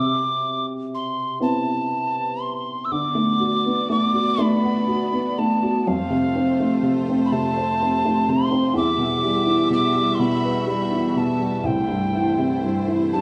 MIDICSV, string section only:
0, 0, Header, 1, 2, 480
1, 0, Start_track
1, 0, Tempo, 991736
1, 1406, Time_signature, 6, 3, 24, 8
1, 2369, Tempo, 975610
1, 3809, Tempo, 956938
1, 5729, Tempo, 995025
1, 6483, End_track
2, 0, Start_track
2, 0, Title_t, "String section"
2, 0, Program_c, 0, 48
2, 1405, Note_on_c, 0, 59, 58
2, 1405, Note_on_c, 0, 66, 52
2, 1409, Note_on_c, 0, 74, 64
2, 2834, Note_off_c, 0, 59, 0
2, 2834, Note_off_c, 0, 66, 0
2, 2836, Note_off_c, 0, 74, 0
2, 2839, Note_on_c, 0, 57, 65
2, 2840, Note_on_c, 0, 72, 75
2, 2841, Note_on_c, 0, 65, 62
2, 4268, Note_off_c, 0, 57, 0
2, 4268, Note_off_c, 0, 65, 0
2, 4268, Note_off_c, 0, 72, 0
2, 4286, Note_on_c, 0, 55, 70
2, 4286, Note_on_c, 0, 66, 67
2, 4287, Note_on_c, 0, 76, 80
2, 5711, Note_off_c, 0, 55, 0
2, 5711, Note_off_c, 0, 66, 0
2, 5711, Note_off_c, 0, 76, 0
2, 5726, Note_on_c, 0, 64, 58
2, 5726, Note_on_c, 0, 72, 71
2, 5727, Note_on_c, 0, 57, 65
2, 6483, Note_off_c, 0, 57, 0
2, 6483, Note_off_c, 0, 64, 0
2, 6483, Note_off_c, 0, 72, 0
2, 6483, End_track
0, 0, End_of_file